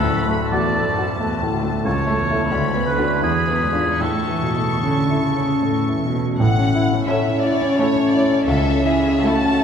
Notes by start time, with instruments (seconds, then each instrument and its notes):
Already playing: cello section D2, grand piano D2, oboe A4, violin section B5
0.03 grand piano A2
0.15 cello section F#2
0.27 grand piano A3
0.52 cello section E2, grand piano F#4, oboe D5, violin section A5
0.76 grand piano A4
0.86 cello section F#2
0.98 grand piano F#4
1.19 cello section E2, grand piano A3
1.42 grand piano A2
1.52 cello section D2
1.63 grand piano A3
1.85 grand piano C#2, cello section C#2, oboe C#5, violin section A5
2.07 grand piano A3
2.19 cello section E2
2.31 grand piano E4 A4
2.52 grand piano D2, cello section D2, violin section B5
2.75 grand piano B3
2.86 cello section D3, oboe B4
2.97 grand piano D4 F#4
3.22 cello section E2, grand piano E2, oboe G#4, violin section B5
3.48 grand piano B3
3.60 cello section G#2
3.73 grand piano D4 F4
4.00 cello section A2, grand piano A2, oboe A4, violin section C#6
4.28 grand piano E3
4.43 cello section B2
4.56 grand piano A3
4.83 cello section D3, grand piano C#4
5.10 grand piano E4
5.24 cello section C#3
5.36 grand piano C#4
5.62 cello section A2, grand piano A3
5.89 grand piano E3
6.02 cello section B2
6.15 grand piano A3
6.39 double bass section A1, cello section A2, grand piano A2, violin section F#5
6.58 grand piano C#4
6.75 grand piano E4
6.93 grand piano C#4
7.08 viola section C#4 E4, grand piano A4, violin section C#5 E5
7.29 grand piano C#4
7.42 grand piano E4, violin section D5
7.62 grand piano C#4
7.78 grand piano A3, viola section C#4 E4, violin section C#5
7.96 grand piano C#4
8.12 grand piano E4, violin section D5
8.30 grand piano C#4
8.47 grand piano C#2, cello section C#2, double bass section C#2, violin section A4 E5
8.66 grand piano C#4
8.86 grand piano E4, violin section G#4
9.05 grand piano C#4
9.24 viola section A3 E4, violin section F#4 A5, grand piano A4
9.44 grand piano C#4
9.60 grand piano E4